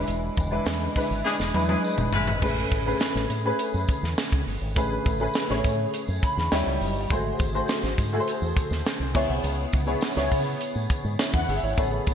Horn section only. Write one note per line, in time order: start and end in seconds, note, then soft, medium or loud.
1.24 1.34 E3 medium
1.24 1.34 D4 medium
1.24 1.34 G#4 loud
1.69 1.81 E3 medium
1.69 1.81 D4 medium
1.69 1.81 G#4 medium
2.12 2.31 G#3 medium
2.12 2.31 E4 medium
2.12 2.31 B4 medium